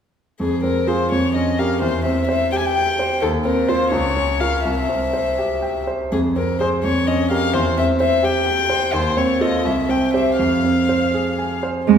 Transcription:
0.39 grand piano F2, violin G#4
0.63 grand piano C4, violin A#4
0.87 grand piano F4 G#4, violin C5
1.12 grand piano F2, violin C#5
1.35 grand piano C#4, violin D#5
1.59 grand piano G4 A#4, violin F5
1.81 grand piano E2, violin C5
2.04 grand piano C4, violin E5
2.27 grand piano C5, violin E5
2.52 grand piano G4, violin G5
2.58 violin G#5
2.65 violin G5
2.76 grand piano G5
2.99 grand piano C5
3.22 grand piano D#2, violin A4
3.44 grand piano C4, violin A#4
3.68 grand piano F4 C5, violin C5
3.91 grand piano C#2, violin C#5
4.16 grand piano C#4
4.40 grand piano F4 A#4, violin F5
4.65 grand piano C2, violin E5
4.89 grand piano C4
5.14 grand piano C5
5.38 grand piano G4
5.62 grand piano G5
5.87 grand piano C5
6.12 grand piano F2, violin G#4
6.36 grand piano C4, violin A#4
6.60 grand piano G#4 C5, violin C5
6.84 grand piano F2, violin C#5
7.07 grand piano C#4, violin D#5
7.31 grand piano G4 A#4, violin F5
7.54 grand piano E2, violin C5
7.78 grand piano C4, violin E5
8.00 grand piano C5, violin E5
8.23 grand piano G4, violin G5
8.46 grand piano G5
8.70 grand piano C5
8.93 grand piano D#2, violin C5
9.17 grand piano C4, violin C#5
9.41 grand piano F4 A4, violin D#5
9.65 grand piano C2, violin E5
9.89 grand piano C4, violin G5
10.14 grand piano G4 C5, violin E5
10.38 grand piano F2, violin F5
10.64 grand piano C4
10.89 grand piano C5
11.14 grand piano G#4
11.38 grand piano G#5
11.63 grand piano C5
11.88 grand piano F2, cello G#3, violin C5

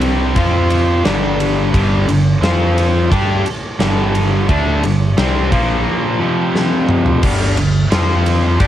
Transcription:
Already playing: picked electric bass C2, distorted electric guitar C3 G3 C4
0.01 ride
0.36 picked electric bass F2, distorted electric guitar F3 C4 F4, kick, ride
0.70 ride
1.04 picked electric bass G1, distorted electric guitar G2 D3 G3, snare, ride
1.40 ride
1.73 picked electric bass G1, distorted electric guitar G2 D3 G3, kick, ride
2.08 picked electric bass G1, distorted electric guitar G2 D3, ride
2.42 picked electric bass F2, distorted electric guitar F3 C4 F4, snare, ride
2.78 ride
3.10 picked electric bass G2, distorted electric guitar G3 D4 G4, kick, ride
3.46 ride
3.80 picked electric bass G1, distorted electric guitar G2 D3 G3, snare, ride
4.15 ride
4.49 picked electric bass D2, distorted electric guitar D3 A3 D4, kick, ride
4.83 picked electric bass G1, distorted electric guitar G2 D3, ride
5.17 picked electric bass C2, distorted electric guitar C3 G3 C4, snare, ride
5.51 picked electric bass A#1, distorted electric guitar A#2 F3 A#3, kick, ride
6.20 distorted electric guitar F2 C3 F3
6.55 snare
6.89 mid tom
7.06 floor tom
7.23 picked electric bass G1, distorted electric guitar G2 D3 G3, kick, crash
7.41 snare
7.57 picked electric bass G1, distorted electric guitar G2 D3, ride
7.91 picked electric bass F2, distorted electric guitar F3 C4 F4, snare, ride
8.26 ride
8.59 picked electric bass G2, distorted electric guitar G3 D4 G4, kick, ride

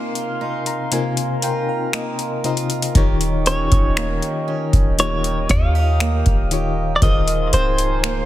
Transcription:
Already playing: fm electric piano C3 C4 D#4 F4 A#4, steel-string acoustic guitar C3 A#3 D#4 F4, clean electric guitar A#4, analog synth pad A#4 F5 G#5 C6
0.15 closed hi-hat
0.41 steel-string acoustic guitar D#4, fm electric piano C6
0.66 fm electric piano A#5, closed hi-hat
0.92 fm electric piano C3 C4 D#4 F4 A#4 G#5, steel-string acoustic guitar A#3, analog synth pad A#5, closed hi-hat
1.17 closed hi-hat
1.42 steel-string acoustic guitar F4, fm electric piano G5, closed hi-hat
1.69 fm electric piano F5
1.93 steel-string acoustic guitar A#3, fm electric piano D#5, finger snap, closed hi-hat
2.19 closed hi-hat
2.44 fm electric piano C3 C4 D#4 F4 A#4 D#5, steel-string acoustic guitar F4, closed hi-hat
2.57 closed hi-hat
2.70 closed hi-hat
2.82 closed hi-hat
2.95 808-style bass D#1, fm electric piano D#3 D#4 F4 G4 C#5, steel-string acoustic guitar D#3 G4, analog synth pad D#5 G5 C#6, kick, closed hi-hat
3.21 closed hi-hat
3.46 steel-string acoustic guitar C#4, clean electric guitar C#5, closed hi-hat
3.72 808-style bass D#1, kick, closed hi-hat
3.97 steel-string acoustic guitar A#3, finger snap, closed hi-hat
4.22 closed hi-hat
4.48 steel-string acoustic guitar C#4
4.73 808-style bass D#1, kick, closed hi-hat
4.98 fm electric piano D#3 D#4 F4 G4 C#5, steel-string acoustic guitar A#3, clean electric guitar C#5, analog synth pad D#6, closed hi-hat
5.24 closed hi-hat
5.49 808-style bass D#2, steel-string acoustic guitar F4, clean electric guitar F5, kick, closed hi-hat
5.75 steel-string acoustic guitar G4
6.00 steel-string acoustic guitar A#3, finger snap, closed hi-hat
6.26 808-style bass D#1, kick, closed hi-hat
6.51 fm electric piano D#3 D#4 F4 G4 C#5, steel-string acoustic guitar G4, closed hi-hat
6.96 clean electric guitar D5
7.02 808-style bass D#1, fm electric piano D#3 D#4 F4 G#4 A#4 C5, steel-string acoustic guitar D#3 F4, clean electric guitar D#5, analog synth pad F5 G#5 C6, kick, closed hi-hat
7.28 closed hi-hat
7.53 808-style bass C#1, steel-string acoustic guitar C4, clean electric guitar C5, closed hi-hat
7.78 closed hi-hat
8.04 steel-string acoustic guitar A#3, finger snap, closed hi-hat

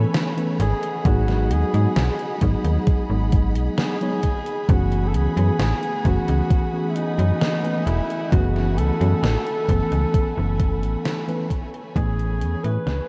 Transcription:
Already playing: tine electric piano E3 A3 B3 C#4 A4, string section A3 C#5 G#5 B5, alto saxophone A4
0.14 snare, closed hi-hat
0.37 tine electric piano E3 A3 B3 C#4 B4, closed hi-hat
0.59 fm bass G#1, string section G#4 D#5 F#5, alto saxophone G#4, closed hi-hat
0.83 closed hi-hat
1.05 fm bass G#1, tine electric piano F#3 G#3 B3 D#4 G#4, alto saxophone F#4, kick, closed hi-hat
1.28 snare, closed hi-hat
1.50 fm bass D#2, alto saxophone G#4, closed hi-hat
1.73 fm bass G#2, tine electric piano F#3 G#3 B3 D#4 G#4, closed hi-hat
1.96 fm bass B1, snare, closed hi-hat
2.19 closed hi-hat
2.41 fm bass G#1, tine electric piano F#3 G#3 B3 D#4 G#4, kick, closed hi-hat
2.64 fm bass D#2, closed hi-hat
2.87 kick, closed hi-hat
3.10 fm bass G#1, tine electric piano F#3 G#3 B3 D#4 G#4
3.32 kick, closed hi-hat
3.55 fm bass B1, closed hi-hat
3.78 alto saxophone G#4, snare, closed hi-hat
4.01 tine electric piano F#3 G#3 B3 D#4 C#5, closed hi-hat
4.23 kick, closed hi-hat
4.46 closed hi-hat
4.68 fm bass F#1, tine electric piano E3 A3 B3 C#4 G#4, string section A3 F#5 G#5, alto saxophone F#4, kick, closed hi-hat
4.92 closed hi-hat
5.07 alto saxophone A4
5.14 fm bass C#2, alto saxophone G#4, closed hi-hat
5.37 fm bass F#2, tine electric piano E3 A3 B3 C#4 G#4, closed hi-hat
5.59 fm bass A1, snare, closed hi-hat
5.83 closed hi-hat
6.05 fm bass F#1, tine electric piano E3 A3 B3 C#4 G#4, alto saxophone F#4, kick, closed hi-hat
6.28 fm bass C#2, closed hi-hat
6.51 kick, closed hi-hat
6.73 tine electric piano E3 A3 B3 C#4 G#4
6.90 alto saxophone E4
6.96 alto saxophone D#4, closed hi-hat
7.19 fm bass F#2, closed hi-hat
7.42 snare, closed hi-hat
7.63 tine electric piano E3 A3 B3 C#4 B4, closed hi-hat
7.86 fm bass E1, alto saxophone E4, closed hi-hat
8.10 closed hi-hat
8.32 fm bass F#1, tine electric piano E3 A3 B3 C#4 G#4, alto saxophone F#4, kick, closed hi-hat
8.56 snare, closed hi-hat
8.77 fm bass C#2, alto saxophone A4, closed hi-hat
9.01 fm bass F#2, tine electric piano E3 A3 B3 C#4 G#4, closed hi-hat
9.23 fm bass A1, snare, closed hi-hat
9.47 closed hi-hat
9.68 fm bass F#1, tine electric piano E3 A3 B3 C#4 A4, kick, closed hi-hat
9.92 fm bass C#2, closed hi-hat
10.14 kick, closed hi-hat
10.37 fm bass F#1, tine electric piano E3 A3 B3 C#4 A4
10.60 kick, closed hi-hat
10.82 fm bass A1, closed hi-hat
11.05 snare, closed hi-hat
11.27 tine electric piano E3 A3 B3 C#4 B4, closed hi-hat
11.50 string section C#5, kick, closed hi-hat
11.74 closed hi-hat
11.95 fm bass A1, tine electric piano E3 A3 B3 C#4 G#4, alto saxophone G#4, kick, closed hi-hat
12.19 closed hi-hat
12.41 fm bass E2, closed hi-hat
12.63 fm bass A2, tine electric piano E3 A3 B3 C#4 G#4, alto saxophone B4, closed hi-hat
12.86 fm bass C#2, snare, closed hi-hat

